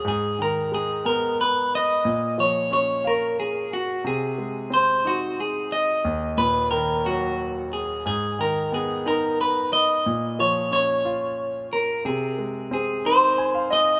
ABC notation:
X:1
M:6/8
L:1/16
Q:3/8=60
K:Abdor
V:1 name="Clean electric guitar"
A2 B2 A2 B2 c2 e2- | e2 d2 d2 B2 A2 G2 | A4 =c2 G2 A2 e2- | e2 c2 B2 G4 A2 |
A2 B2 A2 B2 c2 e2- | e2 d2 d6 B2 | A4 A2 =c4 e2 |]
V:2 name="Grand piano"
z12 | z12 | z12 | z12 |
z12 | z12 | z8 a f e2 |]
V:3 name="Grand piano" clef=bass
A,,2 E,2 A,2 C6 | B,,2 F,2 D2 f6 | =C,2 A,2 =C2 E6 | E,,2 B,,2 E,2 G,6 |
A,,2 E,2 C2 E6 | B,,2 F,2 D2 F6 | =C,2 A,2 =C2 E6 |]